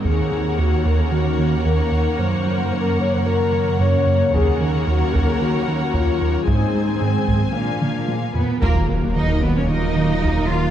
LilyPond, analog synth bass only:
\new Staff \with { instrumentName = "Analog synth bass" } { \clef bass \time 4/4 \key ees \dorian \tempo 4 = 112 ees,8 ees8 ees,8 ees,8 ees8 ees8 ees,8 ees,8 | ges,8 ges8 ges,8 ges,8 ges8 ges8 ges,8 ges,8 | ees,8 ees8 ees,8 ees,8 ees8 ees8 ees,8 ees,8 | aes,8 aes8 aes,8 aes,8 bes8 bes8 bes,8 bes,8 |
\key ees \minor ees,8 ees8 ees8 ees,8 ees8 ees8 ees,8 ees8 | }